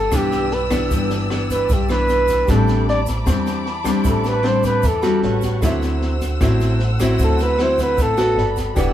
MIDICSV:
0, 0, Header, 1, 7, 480
1, 0, Start_track
1, 0, Tempo, 392413
1, 1114, Time_signature, 4, 2, 24, 8
1, 10927, End_track
2, 0, Start_track
2, 0, Title_t, "String section"
2, 0, Program_c, 0, 48
2, 0, Note_on_c, 0, 67, 71
2, 0, Note_on_c, 0, 74, 70
2, 0, Note_on_c, 0, 88, 89
2, 2988, Note_off_c, 0, 74, 0
2, 2989, Note_off_c, 0, 67, 0
2, 2991, Note_off_c, 0, 88, 0
2, 3036, Note_on_c, 0, 81, 66
2, 3038, Note_on_c, 0, 83, 70
2, 3038, Note_on_c, 0, 86, 81
2, 6362, Note_off_c, 0, 83, 0
2, 6362, Note_off_c, 0, 86, 0
2, 6404, Note_on_c, 0, 71, 69
2, 6408, Note_on_c, 0, 78, 69
2, 6410, Note_on_c, 0, 85, 68
2, 6837, Note_off_c, 0, 81, 0
2, 6875, Note_off_c, 0, 71, 0
2, 6877, Note_off_c, 0, 78, 0
2, 6877, Note_off_c, 0, 85, 0
2, 6900, Note_on_c, 0, 72, 75
2, 6905, Note_on_c, 0, 88, 87
2, 6913, Note_on_c, 0, 78, 64
2, 10213, Note_off_c, 0, 72, 0
2, 10215, Note_off_c, 0, 88, 0
2, 10253, Note_on_c, 0, 83, 70
2, 10261, Note_on_c, 0, 69, 75
2, 10694, Note_off_c, 0, 78, 0
2, 10719, Note_off_c, 0, 83, 0
2, 10719, Note_on_c, 0, 74, 80
2, 10719, Note_on_c, 0, 88, 78
2, 10723, Note_off_c, 0, 69, 0
2, 10927, Note_off_c, 0, 74, 0
2, 10927, Note_off_c, 0, 88, 0
2, 10927, End_track
3, 0, Start_track
3, 0, Title_t, "Flugelhorn"
3, 0, Program_c, 1, 56
3, 0, Note_on_c, 1, 69, 97
3, 199, Note_on_c, 1, 67, 81
3, 217, Note_off_c, 1, 69, 0
3, 651, Note_on_c, 1, 71, 64
3, 669, Note_off_c, 1, 67, 0
3, 883, Note_off_c, 1, 71, 0
3, 1853, Note_on_c, 1, 71, 69
3, 2120, Note_on_c, 1, 67, 64
3, 2139, Note_off_c, 1, 71, 0
3, 2324, Note_off_c, 1, 67, 0
3, 2332, Note_on_c, 1, 71, 90
3, 3075, Note_on_c, 1, 69, 69
3, 3094, Note_off_c, 1, 71, 0
3, 3535, Note_off_c, 1, 69, 0
3, 3544, Note_on_c, 1, 74, 93
3, 3680, Note_off_c, 1, 74, 0
3, 4999, Note_on_c, 1, 69, 71
3, 5229, Note_on_c, 1, 71, 87
3, 5248, Note_off_c, 1, 69, 0
3, 5463, Note_on_c, 1, 72, 98
3, 5481, Note_off_c, 1, 71, 0
3, 5689, Note_off_c, 1, 72, 0
3, 5701, Note_on_c, 1, 71, 87
3, 5960, Note_on_c, 1, 69, 76
3, 5978, Note_off_c, 1, 71, 0
3, 6657, Note_off_c, 1, 69, 0
3, 8855, Note_on_c, 1, 69, 72
3, 9085, Note_on_c, 1, 71, 75
3, 9103, Note_off_c, 1, 69, 0
3, 9328, Note_on_c, 1, 72, 82
3, 9346, Note_off_c, 1, 71, 0
3, 9541, Note_off_c, 1, 72, 0
3, 9565, Note_on_c, 1, 71, 81
3, 9812, Note_on_c, 1, 69, 94
3, 9830, Note_off_c, 1, 71, 0
3, 10503, Note_off_c, 1, 69, 0
3, 10927, End_track
4, 0, Start_track
4, 0, Title_t, "Grand piano"
4, 0, Program_c, 2, 0
4, 0, Control_c, 2, 64, 127
4, 0, Note_on_c, 2, 67, 48
4, 0, Note_on_c, 2, 78, 51
4, 2962, Note_off_c, 2, 78, 0
4, 2976, Note_off_c, 2, 67, 0
4, 2997, Note_on_c, 2, 67, 54
4, 3022, Note_on_c, 2, 71, 44
4, 3043, Note_on_c, 2, 72, 46
4, 3050, Control_c, 2, 64, 0
4, 3069, Note_on_c, 2, 74, 48
4, 3244, Control_c, 2, 64, 127
4, 6327, Note_off_c, 2, 67, 0
4, 6339, Note_off_c, 2, 71, 0
4, 6350, Note_off_c, 2, 72, 0
4, 6363, Note_off_c, 2, 74, 0
4, 6371, Note_on_c, 2, 66, 46
4, 6393, Note_on_c, 2, 71, 43
4, 6412, Control_c, 2, 64, 0
4, 6412, Note_on_c, 2, 73, 53
4, 6586, Control_c, 2, 64, 127
4, 6837, Note_off_c, 2, 66, 0
4, 6855, Note_on_c, 2, 66, 66
4, 6874, Note_off_c, 2, 71, 0
4, 6880, Note_on_c, 2, 69, 55
4, 6883, Note_off_c, 2, 73, 0
4, 6890, Control_c, 2, 64, 0
4, 6907, Note_on_c, 2, 72, 53
4, 6932, Note_on_c, 2, 76, 63
4, 7072, Control_c, 2, 64, 127
4, 9455, Note_off_c, 2, 66, 0
4, 9467, Note_off_c, 2, 69, 0
4, 9481, Note_off_c, 2, 72, 0
4, 9494, Note_off_c, 2, 76, 0
4, 9507, Note_on_c, 2, 66, 34
4, 9515, Note_on_c, 2, 69, 33
4, 9528, Note_on_c, 2, 72, 32
4, 9534, Note_on_c, 2, 78, 37
4, 10201, Note_off_c, 2, 66, 0
4, 10211, Note_off_c, 2, 69, 0
4, 10219, Note_on_c, 2, 66, 46
4, 10230, Note_on_c, 2, 69, 47
4, 10241, Note_off_c, 2, 72, 0
4, 10243, Note_on_c, 2, 71, 46
4, 10244, Note_off_c, 2, 78, 0
4, 10249, Control_c, 2, 64, 0
4, 10252, Note_on_c, 2, 74, 54
4, 10422, Control_c, 2, 64, 127
4, 10686, Note_on_c, 2, 67, 54
4, 10695, Note_off_c, 2, 71, 0
4, 10706, Note_off_c, 2, 66, 0
4, 10712, Note_off_c, 2, 69, 0
4, 10714, Note_off_c, 2, 74, 0
4, 10714, Note_on_c, 2, 71, 54
4, 10731, Control_c, 2, 64, 0
4, 10732, Note_on_c, 2, 74, 53
4, 10762, Note_on_c, 2, 78, 65
4, 10927, Note_off_c, 2, 67, 0
4, 10927, Note_off_c, 2, 71, 0
4, 10927, Note_off_c, 2, 74, 0
4, 10927, Note_off_c, 2, 78, 0
4, 10927, End_track
5, 0, Start_track
5, 0, Title_t, "Nylon-string guitar"
5, 0, Program_c, 3, 24
5, 0, Note_on_c, 3, 43, 55
5, 126, Note_off_c, 3, 43, 0
5, 149, Note_on_c, 3, 43, 56
5, 154, Note_on_c, 3, 52, 51
5, 160, Note_on_c, 3, 59, 49
5, 162, Note_on_c, 3, 62, 58
5, 631, Note_off_c, 3, 52, 0
5, 632, Note_off_c, 3, 59, 0
5, 635, Note_off_c, 3, 62, 0
5, 860, Note_on_c, 3, 52, 59
5, 863, Note_on_c, 3, 59, 61
5, 870, Note_on_c, 3, 62, 64
5, 1089, Note_off_c, 3, 43, 0
5, 1112, Note_on_c, 3, 43, 53
5, 1550, Note_off_c, 3, 52, 0
5, 1550, Note_off_c, 3, 59, 0
5, 1552, Note_off_c, 3, 62, 0
5, 1598, Note_on_c, 3, 52, 48
5, 1607, Note_on_c, 3, 59, 55
5, 1610, Note_on_c, 3, 62, 52
5, 2050, Note_off_c, 3, 43, 0
5, 2067, Note_on_c, 3, 43, 50
5, 2074, Note_off_c, 3, 52, 0
5, 2078, Note_off_c, 3, 59, 0
5, 2078, Note_off_c, 3, 62, 0
5, 2321, Note_on_c, 3, 52, 45
5, 2328, Note_on_c, 3, 59, 53
5, 2333, Note_on_c, 3, 62, 56
5, 3000, Note_off_c, 3, 52, 0
5, 3003, Note_off_c, 3, 59, 0
5, 3006, Note_off_c, 3, 62, 0
5, 3007, Note_off_c, 3, 43, 0
5, 3040, Note_on_c, 3, 45, 52
5, 3041, Note_on_c, 3, 55, 52
5, 3044, Note_on_c, 3, 60, 50
5, 3049, Note_on_c, 3, 62, 54
5, 3682, Note_off_c, 3, 55, 0
5, 3685, Note_off_c, 3, 62, 0
5, 3686, Note_off_c, 3, 60, 0
5, 3975, Note_off_c, 3, 45, 0
5, 3985, Note_on_c, 3, 52, 47
5, 3988, Note_on_c, 3, 55, 50
5, 3993, Note_on_c, 3, 60, 52
5, 3999, Note_on_c, 3, 62, 54
5, 4468, Note_off_c, 3, 55, 0
5, 4472, Note_off_c, 3, 60, 0
5, 4473, Note_off_c, 3, 62, 0
5, 4700, Note_on_c, 3, 55, 56
5, 4708, Note_on_c, 3, 60, 54
5, 4712, Note_on_c, 3, 62, 62
5, 4926, Note_off_c, 3, 52, 0
5, 4942, Note_on_c, 3, 45, 54
5, 5389, Note_off_c, 3, 55, 0
5, 5393, Note_off_c, 3, 60, 0
5, 5395, Note_off_c, 3, 62, 0
5, 5418, Note_on_c, 3, 55, 55
5, 5425, Note_on_c, 3, 60, 52
5, 5431, Note_on_c, 3, 62, 60
5, 5884, Note_off_c, 3, 45, 0
5, 5903, Note_on_c, 3, 52, 51
5, 5904, Note_off_c, 3, 55, 0
5, 5907, Note_off_c, 3, 60, 0
5, 5909, Note_off_c, 3, 62, 0
5, 6144, Note_on_c, 3, 55, 51
5, 6150, Note_on_c, 3, 66, 62
5, 6155, Note_on_c, 3, 61, 52
5, 6365, Note_off_c, 3, 52, 0
5, 6831, Note_off_c, 3, 55, 0
5, 6834, Note_off_c, 3, 66, 0
5, 6836, Note_off_c, 3, 61, 0
5, 6880, Note_on_c, 3, 50, 56
5, 6882, Note_on_c, 3, 54, 54
5, 6891, Note_on_c, 3, 60, 50
5, 6892, Note_on_c, 3, 64, 57
5, 7522, Note_off_c, 3, 54, 0
5, 7524, Note_off_c, 3, 60, 0
5, 7528, Note_off_c, 3, 64, 0
5, 7815, Note_off_c, 3, 50, 0
5, 7837, Note_on_c, 3, 45, 60
5, 7842, Note_on_c, 3, 54, 55
5, 7848, Note_on_c, 3, 60, 61
5, 7851, Note_on_c, 3, 64, 64
5, 8316, Note_off_c, 3, 54, 0
5, 8316, Note_off_c, 3, 64, 0
5, 8317, Note_off_c, 3, 60, 0
5, 8563, Note_on_c, 3, 54, 55
5, 8576, Note_on_c, 3, 60, 60
5, 8582, Note_on_c, 3, 64, 65
5, 8772, Note_off_c, 3, 45, 0
5, 8816, Note_on_c, 3, 50, 53
5, 9240, Note_off_c, 3, 54, 0
5, 9247, Note_off_c, 3, 60, 0
5, 9249, Note_off_c, 3, 64, 0
5, 9299, Note_on_c, 3, 54, 52
5, 9304, Note_on_c, 3, 60, 53
5, 9310, Note_on_c, 3, 64, 57
5, 9741, Note_off_c, 3, 50, 0
5, 9770, Note_on_c, 3, 45, 53
5, 9968, Note_off_c, 3, 54, 0
5, 9971, Note_off_c, 3, 60, 0
5, 9971, Note_off_c, 3, 64, 0
5, 9995, Note_on_c, 3, 59, 54
5, 9998, Note_on_c, 3, 66, 54
5, 10007, Note_on_c, 3, 69, 59
5, 10218, Note_off_c, 3, 45, 0
5, 10676, Note_off_c, 3, 59, 0
5, 10677, Note_off_c, 3, 66, 0
5, 10682, Note_off_c, 3, 69, 0
5, 10713, Note_on_c, 3, 52, 49
5, 10715, Note_on_c, 3, 59, 55
5, 10720, Note_on_c, 3, 62, 49
5, 10722, Note_on_c, 3, 67, 57
5, 10927, Note_off_c, 3, 52, 0
5, 10927, Note_off_c, 3, 59, 0
5, 10927, Note_off_c, 3, 62, 0
5, 10927, Note_off_c, 3, 67, 0
5, 10927, End_track
6, 0, Start_track
6, 0, Title_t, "Upright bass"
6, 0, Program_c, 4, 32
6, 154, Note_on_c, 4, 35, 86
6, 1066, Note_off_c, 4, 35, 0
6, 1107, Note_on_c, 4, 31, 92
6, 2022, Note_off_c, 4, 31, 0
6, 2070, Note_on_c, 4, 35, 82
6, 2984, Note_off_c, 4, 35, 0
6, 3036, Note_on_c, 4, 33, 97
6, 3947, Note_off_c, 4, 33, 0
6, 3995, Note_on_c, 4, 40, 90
6, 4906, Note_off_c, 4, 40, 0
6, 4955, Note_on_c, 4, 33, 86
6, 5866, Note_off_c, 4, 33, 0
6, 5915, Note_on_c, 4, 40, 83
6, 6361, Note_off_c, 4, 40, 0
6, 6392, Note_on_c, 4, 33, 88
6, 6840, Note_off_c, 4, 33, 0
6, 6876, Note_on_c, 4, 38, 99
6, 7786, Note_off_c, 4, 38, 0
6, 7840, Note_on_c, 4, 33, 93
6, 8748, Note_off_c, 4, 33, 0
6, 8801, Note_on_c, 4, 38, 95
6, 9708, Note_off_c, 4, 38, 0
6, 9763, Note_on_c, 4, 33, 88
6, 10205, Note_off_c, 4, 33, 0
6, 10225, Note_on_c, 4, 31, 84
6, 10675, Note_off_c, 4, 31, 0
6, 10722, Note_on_c, 4, 28, 86
6, 10927, Note_off_c, 4, 28, 0
6, 10927, End_track
7, 0, Start_track
7, 0, Title_t, "Drums"
7, 141, Note_on_c, 9, 82, 66
7, 143, Note_on_c, 9, 37, 59
7, 143, Note_on_c, 9, 38, 25
7, 150, Note_on_c, 9, 36, 55
7, 263, Note_off_c, 9, 82, 0
7, 265, Note_off_c, 9, 37, 0
7, 265, Note_off_c, 9, 38, 0
7, 272, Note_off_c, 9, 36, 0
7, 384, Note_on_c, 9, 38, 24
7, 392, Note_on_c, 9, 82, 28
7, 506, Note_off_c, 9, 38, 0
7, 514, Note_off_c, 9, 82, 0
7, 626, Note_on_c, 9, 38, 23
7, 748, Note_off_c, 9, 38, 0
7, 863, Note_on_c, 9, 37, 57
7, 863, Note_on_c, 9, 38, 22
7, 868, Note_on_c, 9, 82, 65
7, 869, Note_on_c, 9, 36, 24
7, 985, Note_off_c, 9, 37, 0
7, 985, Note_off_c, 9, 38, 0
7, 990, Note_off_c, 9, 82, 0
7, 992, Note_off_c, 9, 36, 0
7, 1108, Note_on_c, 9, 38, 22
7, 1111, Note_on_c, 9, 36, 55
7, 1111, Note_on_c, 9, 82, 59
7, 1230, Note_off_c, 9, 38, 0
7, 1233, Note_off_c, 9, 36, 0
7, 1233, Note_off_c, 9, 82, 0
7, 1346, Note_on_c, 9, 38, 27
7, 1353, Note_on_c, 9, 82, 22
7, 1468, Note_off_c, 9, 38, 0
7, 1475, Note_off_c, 9, 82, 0
7, 1594, Note_on_c, 9, 37, 52
7, 1594, Note_on_c, 9, 38, 22
7, 1717, Note_off_c, 9, 37, 0
7, 1717, Note_off_c, 9, 38, 0
7, 1834, Note_on_c, 9, 36, 20
7, 1838, Note_on_c, 9, 38, 23
7, 1838, Note_on_c, 9, 82, 61
7, 1956, Note_off_c, 9, 36, 0
7, 1960, Note_off_c, 9, 38, 0
7, 1960, Note_off_c, 9, 82, 0
7, 2067, Note_on_c, 9, 82, 60
7, 2073, Note_on_c, 9, 36, 58
7, 2078, Note_on_c, 9, 38, 23
7, 2189, Note_off_c, 9, 82, 0
7, 2196, Note_off_c, 9, 36, 0
7, 2200, Note_off_c, 9, 38, 0
7, 2302, Note_on_c, 9, 82, 25
7, 2317, Note_on_c, 9, 37, 51
7, 2317, Note_on_c, 9, 38, 22
7, 2424, Note_off_c, 9, 82, 0
7, 2439, Note_off_c, 9, 37, 0
7, 2439, Note_off_c, 9, 38, 0
7, 2548, Note_on_c, 9, 82, 45
7, 2556, Note_on_c, 9, 38, 21
7, 2670, Note_off_c, 9, 82, 0
7, 2678, Note_off_c, 9, 38, 0
7, 2784, Note_on_c, 9, 82, 58
7, 2796, Note_on_c, 9, 36, 22
7, 2801, Note_on_c, 9, 38, 22
7, 2907, Note_off_c, 9, 82, 0
7, 2918, Note_off_c, 9, 36, 0
7, 2924, Note_off_c, 9, 38, 0
7, 3031, Note_on_c, 9, 82, 57
7, 3036, Note_on_c, 9, 36, 58
7, 3041, Note_on_c, 9, 37, 55
7, 3041, Note_on_c, 9, 38, 21
7, 3153, Note_off_c, 9, 82, 0
7, 3158, Note_off_c, 9, 36, 0
7, 3163, Note_off_c, 9, 37, 0
7, 3163, Note_off_c, 9, 38, 0
7, 3271, Note_on_c, 9, 82, 25
7, 3280, Note_on_c, 9, 38, 26
7, 3393, Note_off_c, 9, 82, 0
7, 3403, Note_off_c, 9, 38, 0
7, 3524, Note_on_c, 9, 38, 22
7, 3646, Note_off_c, 9, 38, 0
7, 3745, Note_on_c, 9, 82, 59
7, 3756, Note_on_c, 9, 36, 25
7, 3765, Note_on_c, 9, 38, 24
7, 3867, Note_off_c, 9, 82, 0
7, 3879, Note_off_c, 9, 36, 0
7, 3887, Note_off_c, 9, 38, 0
7, 3995, Note_on_c, 9, 36, 53
7, 3996, Note_on_c, 9, 82, 67
7, 3997, Note_on_c, 9, 37, 60
7, 3997, Note_on_c, 9, 38, 22
7, 4118, Note_off_c, 9, 36, 0
7, 4119, Note_off_c, 9, 82, 0
7, 4120, Note_off_c, 9, 37, 0
7, 4120, Note_off_c, 9, 38, 0
7, 4236, Note_on_c, 9, 38, 24
7, 4237, Note_on_c, 9, 82, 28
7, 4358, Note_off_c, 9, 38, 0
7, 4360, Note_off_c, 9, 82, 0
7, 4478, Note_on_c, 9, 38, 21
7, 4600, Note_off_c, 9, 38, 0
7, 4711, Note_on_c, 9, 82, 59
7, 4714, Note_on_c, 9, 36, 23
7, 4715, Note_on_c, 9, 37, 57
7, 4715, Note_on_c, 9, 38, 25
7, 4833, Note_off_c, 9, 82, 0
7, 4837, Note_off_c, 9, 36, 0
7, 4837, Note_off_c, 9, 37, 0
7, 4837, Note_off_c, 9, 38, 0
7, 4945, Note_on_c, 9, 82, 66
7, 4949, Note_on_c, 9, 38, 21
7, 4954, Note_on_c, 9, 36, 58
7, 5067, Note_off_c, 9, 82, 0
7, 5071, Note_off_c, 9, 38, 0
7, 5076, Note_off_c, 9, 36, 0
7, 5182, Note_on_c, 9, 82, 24
7, 5195, Note_on_c, 9, 38, 26
7, 5304, Note_off_c, 9, 82, 0
7, 5317, Note_off_c, 9, 38, 0
7, 5433, Note_on_c, 9, 37, 51
7, 5433, Note_on_c, 9, 38, 21
7, 5556, Note_off_c, 9, 37, 0
7, 5556, Note_off_c, 9, 38, 0
7, 5666, Note_on_c, 9, 82, 53
7, 5671, Note_on_c, 9, 38, 22
7, 5675, Note_on_c, 9, 36, 22
7, 5788, Note_off_c, 9, 82, 0
7, 5793, Note_off_c, 9, 38, 0
7, 5797, Note_off_c, 9, 36, 0
7, 5904, Note_on_c, 9, 82, 60
7, 5910, Note_on_c, 9, 38, 23
7, 5914, Note_on_c, 9, 36, 55
7, 6026, Note_off_c, 9, 82, 0
7, 6033, Note_off_c, 9, 38, 0
7, 6037, Note_off_c, 9, 36, 0
7, 6144, Note_on_c, 9, 82, 27
7, 6154, Note_on_c, 9, 37, 60
7, 6154, Note_on_c, 9, 38, 22
7, 6266, Note_off_c, 9, 82, 0
7, 6276, Note_off_c, 9, 37, 0
7, 6276, Note_off_c, 9, 38, 0
7, 6393, Note_on_c, 9, 38, 23
7, 6516, Note_off_c, 9, 38, 0
7, 6623, Note_on_c, 9, 82, 65
7, 6635, Note_on_c, 9, 38, 26
7, 6636, Note_on_c, 9, 36, 24
7, 6745, Note_off_c, 9, 82, 0
7, 6757, Note_off_c, 9, 38, 0
7, 6759, Note_off_c, 9, 36, 0
7, 6877, Note_on_c, 9, 37, 58
7, 6877, Note_on_c, 9, 38, 22
7, 6878, Note_on_c, 9, 36, 59
7, 6878, Note_on_c, 9, 82, 65
7, 7000, Note_off_c, 9, 36, 0
7, 7000, Note_off_c, 9, 37, 0
7, 7000, Note_off_c, 9, 38, 0
7, 7000, Note_off_c, 9, 82, 0
7, 7119, Note_on_c, 9, 38, 23
7, 7120, Note_on_c, 9, 82, 25
7, 7241, Note_off_c, 9, 38, 0
7, 7242, Note_off_c, 9, 82, 0
7, 7358, Note_on_c, 9, 38, 22
7, 7481, Note_off_c, 9, 38, 0
7, 7594, Note_on_c, 9, 38, 22
7, 7599, Note_on_c, 9, 36, 21
7, 7600, Note_on_c, 9, 82, 57
7, 7716, Note_off_c, 9, 38, 0
7, 7721, Note_off_c, 9, 36, 0
7, 7722, Note_off_c, 9, 82, 0
7, 7838, Note_on_c, 9, 37, 59
7, 7838, Note_on_c, 9, 38, 23
7, 7840, Note_on_c, 9, 36, 58
7, 7841, Note_on_c, 9, 82, 55
7, 7960, Note_off_c, 9, 37, 0
7, 7960, Note_off_c, 9, 38, 0
7, 7962, Note_off_c, 9, 36, 0
7, 7964, Note_off_c, 9, 82, 0
7, 8073, Note_on_c, 9, 82, 25
7, 8079, Note_on_c, 9, 38, 22
7, 8195, Note_off_c, 9, 82, 0
7, 8201, Note_off_c, 9, 38, 0
7, 8312, Note_on_c, 9, 38, 23
7, 8435, Note_off_c, 9, 38, 0
7, 8557, Note_on_c, 9, 82, 63
7, 8559, Note_on_c, 9, 36, 24
7, 8559, Note_on_c, 9, 37, 59
7, 8559, Note_on_c, 9, 38, 23
7, 8679, Note_off_c, 9, 82, 0
7, 8682, Note_off_c, 9, 36, 0
7, 8682, Note_off_c, 9, 37, 0
7, 8682, Note_off_c, 9, 38, 0
7, 8794, Note_on_c, 9, 82, 64
7, 8798, Note_on_c, 9, 38, 22
7, 8801, Note_on_c, 9, 36, 54
7, 8916, Note_off_c, 9, 82, 0
7, 8921, Note_off_c, 9, 38, 0
7, 8923, Note_off_c, 9, 36, 0
7, 9033, Note_on_c, 9, 82, 26
7, 9043, Note_on_c, 9, 38, 25
7, 9155, Note_off_c, 9, 82, 0
7, 9166, Note_off_c, 9, 38, 0
7, 9279, Note_on_c, 9, 37, 53
7, 9279, Note_on_c, 9, 38, 20
7, 9401, Note_off_c, 9, 37, 0
7, 9401, Note_off_c, 9, 38, 0
7, 9519, Note_on_c, 9, 82, 56
7, 9521, Note_on_c, 9, 36, 24
7, 9526, Note_on_c, 9, 38, 24
7, 9642, Note_off_c, 9, 82, 0
7, 9643, Note_off_c, 9, 36, 0
7, 9648, Note_off_c, 9, 38, 0
7, 9758, Note_on_c, 9, 82, 62
7, 9762, Note_on_c, 9, 36, 57
7, 9764, Note_on_c, 9, 38, 24
7, 9880, Note_off_c, 9, 82, 0
7, 9885, Note_off_c, 9, 36, 0
7, 9886, Note_off_c, 9, 38, 0
7, 9994, Note_on_c, 9, 82, 29
7, 10004, Note_on_c, 9, 37, 55
7, 10004, Note_on_c, 9, 38, 23
7, 10116, Note_off_c, 9, 82, 0
7, 10126, Note_off_c, 9, 37, 0
7, 10126, Note_off_c, 9, 38, 0
7, 10249, Note_on_c, 9, 38, 23
7, 10371, Note_off_c, 9, 38, 0
7, 10475, Note_on_c, 9, 82, 57
7, 10482, Note_on_c, 9, 36, 23
7, 10484, Note_on_c, 9, 38, 25
7, 10598, Note_off_c, 9, 82, 0
7, 10604, Note_off_c, 9, 36, 0
7, 10606, Note_off_c, 9, 38, 0
7, 10718, Note_on_c, 9, 82, 55
7, 10722, Note_on_c, 9, 36, 54
7, 10723, Note_on_c, 9, 37, 53
7, 10723, Note_on_c, 9, 38, 20
7, 10840, Note_off_c, 9, 82, 0
7, 10844, Note_off_c, 9, 36, 0
7, 10846, Note_off_c, 9, 37, 0
7, 10846, Note_off_c, 9, 38, 0
7, 10927, End_track
0, 0, End_of_file